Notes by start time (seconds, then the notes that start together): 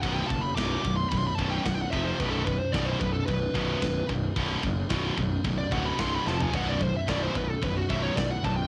0.02 B0 B1 F#2 B2 F#5, kick, crash
0.14 G5
0.27 F#1 B1 F#2 A5, kick, crash
0.41 B5
0.55 B0 B1 F#2 B2 D6, kick, snare, crash
0.84 B0 B1 F#2, kick, crash
0.96 C6
1.09 B0 B1 F#2 B5, kick, crash
1.18 C6
1.27 B5
1.35 B1 F#2 A5, kick
1.39 B0 B2, crash
1.50 G5
1.65 B0 B1 F#2 F#5, kick, snare, crash
1.74 G5
1.82 F#5
1.91 F1 F2 C3 F3 E5, kick, crash
2.05 C5
2.19 B0 B1 F#2 B2 B4, kick, crash
2.31 A4
2.45 B1 F#2 B4, kick, crash
2.59 C5
2.72 B0 B1 F#2 B2 D5, kick, snare, crash
2.85 C5
3.00 B0 B1 F#2 B4, kick, crash
3.13 A4
3.26 B0 B1 F#2 B4, kick, crash
3.55 B0 B1 F#2 B2, kick, crash
3.82 B0 B1 F#2, kick, snare, crash
4.09 B0 B1 F#2, kick, crash
4.36 B0 B1 F#2 B2, kick, crash
4.63 F#1 B1 F#2, kick, crash
4.90 B0 B1 F#2 B2, kick, snare, crash
5.17 B0 B1 F#2, kick, crash
5.44 B0 B1 F#2, kick, crash
5.58 D5
5.71 D1 B1 F#2 B2 F#5, kick, crash
5.86 B5
5.98 C1 C2 G2 C3 C6, kick, snare, crash
6.15 B5
6.26 F1 F2 C3 F3 A5, snare
6.41 G#5, floor tom
6.52 B0 B1 F#2 B2 F#5, kick, crash
6.69 D5
6.80 B1 F#2 C5, kick, crash
6.97 E5
7.07 B0 B1 F#2 B2 D5, kick, snare, crash
7.23 C5
7.35 B0 B1 F#2 B4, kick, crash
7.50 A4
7.62 B0 B1 F#2 B4, kick, crash
7.76 F#4
7.89 B0 B1 F#2 B2 E5, kick, crash
8.03 C#5
8.17 B0 B1 F#2 D5, kick, snare, crash
8.31 F#5
8.44 B0 B1 F#2 A5, kick, crash
8.56 G5